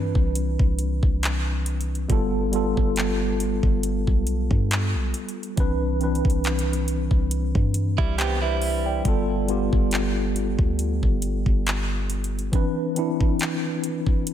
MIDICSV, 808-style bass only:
0, 0, Header, 1, 2, 480
1, 0, Start_track
1, 0, Key_signature, 0, "major"
1, 0, Tempo, 869565
1, 1156, Time_signature, 4, 2, 24, 8
1, 7913, End_track
2, 0, Start_track
2, 0, Title_t, "808-style bass"
2, 0, Program_c, 0, 38
2, 0, Note_on_c, 0, 43, 93
2, 75, Note_off_c, 0, 43, 0
2, 85, Note_on_c, 0, 36, 97
2, 316, Note_off_c, 0, 36, 0
2, 329, Note_on_c, 0, 36, 106
2, 558, Note_off_c, 0, 36, 0
2, 568, Note_on_c, 0, 36, 104
2, 1135, Note_off_c, 0, 36, 0
2, 1158, Note_on_c, 0, 31, 113
2, 1512, Note_off_c, 0, 31, 0
2, 1532, Note_on_c, 0, 31, 103
2, 1990, Note_off_c, 0, 31, 0
2, 2005, Note_on_c, 0, 31, 104
2, 2236, Note_off_c, 0, 31, 0
2, 2250, Note_on_c, 0, 35, 110
2, 2479, Note_off_c, 0, 35, 0
2, 2489, Note_on_c, 0, 43, 108
2, 2729, Note_on_c, 0, 35, 103
2, 2738, Note_off_c, 0, 43, 0
2, 2833, Note_off_c, 0, 35, 0
2, 3078, Note_on_c, 0, 36, 113
2, 3432, Note_off_c, 0, 36, 0
2, 3450, Note_on_c, 0, 36, 104
2, 3909, Note_off_c, 0, 36, 0
2, 3925, Note_on_c, 0, 36, 97
2, 4156, Note_off_c, 0, 36, 0
2, 4169, Note_on_c, 0, 43, 112
2, 4398, Note_off_c, 0, 43, 0
2, 4407, Note_on_c, 0, 36, 102
2, 4975, Note_off_c, 0, 36, 0
2, 4997, Note_on_c, 0, 31, 108
2, 5351, Note_off_c, 0, 31, 0
2, 5370, Note_on_c, 0, 31, 101
2, 5829, Note_off_c, 0, 31, 0
2, 5845, Note_on_c, 0, 38, 99
2, 6076, Note_off_c, 0, 38, 0
2, 6090, Note_on_c, 0, 31, 113
2, 6318, Note_off_c, 0, 31, 0
2, 6327, Note_on_c, 0, 31, 105
2, 6895, Note_off_c, 0, 31, 0
2, 7913, End_track
0, 0, End_of_file